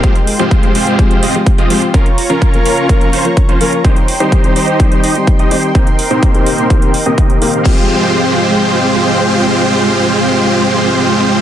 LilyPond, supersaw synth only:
\new Staff \with { instrumentName = "Supersaw synth" } { \time 4/4 \key f \minor \tempo 4 = 126 <aes c' f' g' c''>16 r8 <aes c' f' g' c''>8. <aes c' f' g' c''>4 <aes c' f' g' ees''>16 r8 <aes c' f' g' ees''>16 <aes c' f' g' c''>16 r16 | <des' f' bes'>16 r8 <des' f' bes'>8. <des' f' bes'>4 <des' f' c''>16 r8 <des' f' c''>16 <des' f' bes'>16 r16 | <ees' g' c''>16 r8 <ees' g' c''>8. <ees' g' c''>4 <ees' g' ees''>16 r8 <ees' g' ees''>16 <ees' g' c''>16 r16 | <bes c' ees' g' c''>16 r8 <bes c' ees' g' c''>8. <bes c' ees' g' c''>4 r16 <bes c' ees' g' ees''>8. <bes c' ees' g' f''>8 |
<aes c' f' g' c''>1~ | <aes c' f' g' c''>1 | }